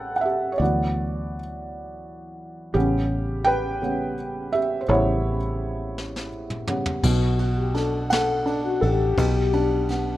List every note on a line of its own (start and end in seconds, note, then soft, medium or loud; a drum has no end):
0.00 0.56 A1 medium
0.00 0.62 C#3 soft
0.00 0.62 G3 soft
0.00 0.62 B3 soft
0.00 0.62 C#4 medium
0.00 0.25 G4 medium
0.00 0.14 A4 medium
0.00 0.62 B4 medium
0.00 0.12 F#5 medium
0.00 0.62 G5 medium
0.16 0.24 F#5 medium
0.21 0.52 E5 medium
0.25 0.52 G4 medium
0.52 0.60 C#5 soft
0.58 2.71 D2 medium
0.58 2.71 E3 soft
0.58 2.71 F#3 soft
0.58 2.72 B3 medium
0.58 1.38 F#4 medium
0.58 1.36 D5 medium
2.74 4.85 A1 medium
2.74 3.80 C#3 soft
2.74 3.81 G3 soft
2.74 3.82 B3 medium
2.74 3.43 C#4 medium
2.74 3.48 G4 medium
3.45 4.50 B4 medium
3.45 4.56 G5 medium
3.82 4.14 C#3 soft
3.82 4.14 G3 soft
3.82 4.15 B3 soft
4.53 4.81 G4 medium
4.53 4.83 E5 medium
4.81 4.89 C5 medium
4.88 6.99 A1 medium
4.88 5.37 C#3 medium
4.88 5.37 G3 soft
4.88 5.37 B3 medium
4.88 6.29 E4 medium
4.88 6.28 C#5 medium
5.98 snare soft
6.16 snare medium
6.50 mid tom medium
6.67 7.00 C#3 soft
6.67 7.00 G3 soft
6.67 7.00 B3 soft
6.67 mid tom medium
6.86 floor tom medium
7.03 8.78 B1 medium
7.03 9.13 B2 medium
7.03 7.53 F#4 medium
7.03 kick loud
7.03 crash medium
7.39 8.78 F#4 medium
7.39 ride soft
7.57 7.75 G4 medium
7.74 8.44 D4 soft
7.74 8.09 A4 medium
7.74 snare soft
7.74 ride soft
8.10 8.60 A4 medium
8.10 9.14 F#5 medium
8.10 snare medium
8.10 ride medium
8.46 9.15 D4 medium
8.46 ride soft
8.64 8.82 F#4 medium
8.81 9.16 A1 medium
8.81 10.17 G4 loud
8.81 9.16 A4 medium
8.81 ride soft
9.18 10.17 B1 loud
9.18 10.17 B2 medium
9.18 kick loud
9.18 ride medium
9.53 10.17 D4 medium
9.53 ride soft
9.88 10.17 B3 medium
9.88 snare soft
9.88 ride soft